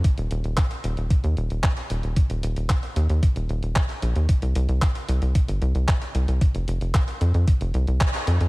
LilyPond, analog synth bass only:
\new Staff \with { instrumentName = "Analog synth bass" } { \clef bass \time 4/4 \key ees \major \tempo 4 = 113 r16 ees,,16 ees,,16 ees,,16 r8 ees,,16 ees,,16 r16 ees,16 ees,,16 ees,,16 r8 ees,,16 ees,,16 | r16 ees,,16 ees,,16 ees,,16 r8 ees,16 ees,16 r16 ees,,16 ees,,16 ees,,16 r8 bes,,16 ees,16 | r16 c,16 c,16 c,16 r8 c,16 c,16 r16 g,,16 c,16 c,16 r8 c,16 c,16 | r16 f,,16 f,,16 f,,16 r8 f,16 f,16 r16 f,,16 c,16 c,16 r8 f,16 f,16 | }